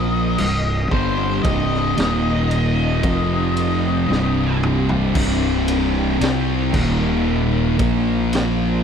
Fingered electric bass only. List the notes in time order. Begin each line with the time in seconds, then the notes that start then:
Already playing: A#1
0.38 C1
0.91 G1
1.45 C1
1.98 D#1
3.03 F1
4.10 C1
5.16 C1
6.21 C2
6.74 D#1
7.80 A#1